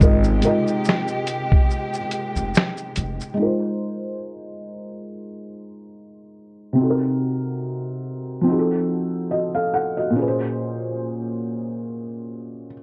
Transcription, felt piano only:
0.00 0.38 G#3 medium
0.00 0.39 D#4 medium
0.00 0.40 F4 medium
0.00 0.41 A#4 medium
0.04 0.41 D#5 medium
0.41 1.96 G#3 medium
0.41 1.97 D#4 medium
0.41 1.98 F4 medium
0.45 1.98 A#4 medium
0.45 1.99 D#5 medium
3.34 6.71 G#3 medium
3.34 6.72 D#4 medium
3.39 6.74 F4 medium
3.39 6.75 A#4 medium
3.45 6.76 C5 medium
6.73 8.41 C3 medium
6.73 8.42 C4 medium
6.78 8.44 D#4 medium
6.78 8.45 F#4 medium
6.84 6.88 A4 medium
6.90 8.50 A#4 medium
8.41 10.10 F3 medium
8.41 10.11 C4 medium
8.47 10.12 D#4 medium
8.47 9.30 F#4 medium
8.52 8.57 G#4 medium
8.59 9.36 A4 medium
9.31 9.54 F#4 soft
9.31 9.53 D#5 medium
9.55 9.72 A4 medium
9.55 9.72 F5 medium
9.74 9.96 A4 medium
9.74 9.96 F#5 medium
9.97 10.38 F#4 soft
9.97 10.37 D#5 medium
10.10 12.83 A#2 medium
10.10 12.83 A#3 medium
10.16 12.83 C#4 medium
10.16 12.67 G#4 medium
10.22 10.26 B4 medium
10.28 12.71 C5 medium

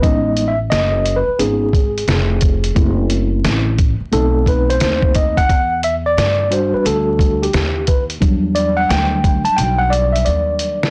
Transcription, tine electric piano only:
0.02 0.52 G#3 medium
0.02 0.52 B3 soft
0.02 0.52 C#4 soft
0.02 0.52 D#4 medium
0.02 0.50 D#5 medium
0.48 0.58 E5 loud
0.70 1.18 D#5 loud
1.16 1.40 B4 medium
1.39 1.70 G#3 medium
1.39 1.70 B3 soft
1.39 1.70 C#4 soft
1.39 1.71 D#4 medium
1.39 3.06 G#4 medium
2.75 3.74 A3 medium
2.75 3.74 C4 soft
2.75 3.75 E4 medium
4.12 5.45 A3 medium
4.12 5.45 C4 medium
4.12 5.45 D#4 medium
4.12 4.48 A4 medium
4.48 4.70 B4 medium
4.70 5.17 C5 loud
5.16 5.38 D#5 medium
5.37 5.80 F#5 loud
5.84 5.94 E5 loud
6.06 6.53 D5 loud
6.51 7.49 G3 medium
6.51 7.49 D4 medium
6.51 7.50 F#4 medium
6.51 6.75 C5 medium
6.74 6.86 B4 medium
6.86 7.44 A4 medium
7.42 7.90 G4 medium
7.88 8.03 B4 medium
8.20 10.90 F#3 medium
8.20 10.90 G3 medium
8.20 10.90 D4 medium
8.55 8.76 D5 medium
8.77 8.90 F#5 loud
8.89 9.42 G5 loud
9.45 9.58 A5 medium
9.56 9.80 G5 loud
9.79 9.92 F#5 medium
9.90 10.14 D5 medium
10.13 10.26 E5 medium
10.25 10.90 D5 medium

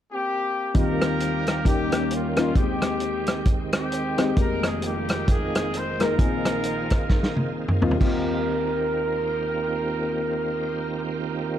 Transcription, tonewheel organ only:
0.75 7.97 D#3 medium
0.75 2.54 G3 medium
0.75 2.54 A#3 medium
0.75 1.64 C4 medium
0.75 1.64 F4 medium
1.65 2.55 C#4 medium
1.65 6.15 G5 medium
2.56 6.15 G#3 medium
2.56 4.35 C4 medium
2.56 4.35 G4 medium
4.37 7.97 A#3 medium
4.37 7.97 F4 medium
6.19 7.99 C4 medium
6.19 7.99 G#4 medium
8.00 11.59 D#3 medium
8.00 11.59 A#3 soft
8.00 11.59 C4 medium
8.00 11.59 F4 medium
8.00 11.59 G4 medium

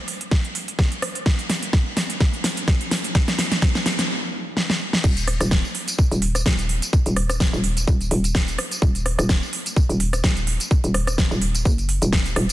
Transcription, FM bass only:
5.04 5.39 D#1 loud
5.41 5.62 D#1 loud
6.11 6.44 D#1 loud
6.46 6.80 D#1 loud
7.06 7.51 D#1 loud
7.53 7.86 D#1 loud
7.88 8.09 D#1 loud
8.11 8.57 D#1 loud
8.82 9.17 D#1 loud
9.19 9.40 D#1 loud
9.89 10.22 D#1 loud
10.24 10.58 D#1 loud
10.84 11.29 D#1 medium
11.31 11.64 D#1 loud
11.65 12.00 F#1 loud
12.02 12.35 D#1 loud
12.36 12.47 D#1 loud

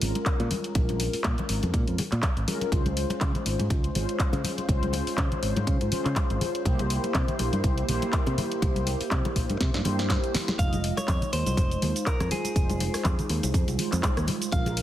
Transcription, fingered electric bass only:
0.02 0.11 G#1 medium
0.40 0.47 A#2 loud
0.75 1.07 A#1 loud
1.14 muted fingered electric bass stroke soft
1.25 1.34 A#2 medium
1.49 1.59 G#1 medium
1.63 1.71 F2 medium
1.74 1.83 A#2 medium
1.88 1.95 F2 medium
2.12 2.20 A#2 medium
2.37 2.44 G#1 medium
2.72 3.04 C#2 medium
3.21 3.31 C#3 medium
3.46 3.55 G#1 medium
3.59 3.67 G#2 medium
3.70 3.88 C#2 loud
3.95 4.04 G#1 medium
4.33 4.41 C#3 loud
4.69 5.00 C#2 medium
5.07 muted fingered electric bass stroke soft
5.18 5.27 C#3 medium
5.43 5.52 G#1 medium
5.56 5.64 G#2 medium
5.67 5.77 C#3 medium
5.81 5.89 G#2 medium
6.05 6.13 C#3 medium
6.30 6.38 G#1 medium
6.66 6.97 C2 medium
7.15 7.24 C3 medium
7.39 7.49 A#1 medium
7.53 7.61 G2 medium
7.64 7.82 C2 loud
7.89 7.98 A#1 medium
8.27 8.34 C3 loud
8.62 8.94 C2 medium
9.01 muted fingered electric bass stroke soft
9.11 9.21 C3 medium
9.36 9.46 A#1 medium
9.50 9.57 G2 medium
9.61 9.70 C3 medium
9.74 9.82 G2 medium
9.85 10.17 G2 medium
10.59 10.90 F1 medium
11.08 11.18 F2 medium
11.33 11.42 D#2 medium
11.47 11.54 C2 medium
11.57 11.75 F1 loud
11.82 11.92 D#2 medium
12.20 12.28 F2 loud
12.56 12.87 F1 loud
12.94 muted fingered electric bass stroke soft
13.05 13.14 F2 medium
13.30 13.39 D#2 medium
13.44 13.51 C2 medium
13.54 13.64 F2 medium
13.68 13.76 C2 medium
13.93 14.00 F2 loud
14.17 14.25 D#2 medium
14.52 14.82 A#1 loud

